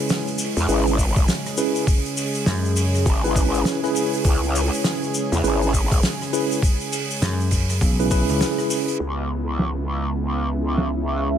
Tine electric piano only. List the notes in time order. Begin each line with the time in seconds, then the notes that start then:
Already playing: C#4 E4 G#4 B4
0.68 C#4 E4 G#4 B4
1.58 C#4 E4 G#4 B4
3.24 C#4 E4 G#4 B4
3.36 C#4 E4 G#4 B4
3.84 C#4 E4 G#4 B4
5.44 C#4 E4 G#4 B4
6.33 C#4 E4 G#4 B4
8.00 C#4 E4 G#4 B4
8.11 C#4 E4 G#4 B4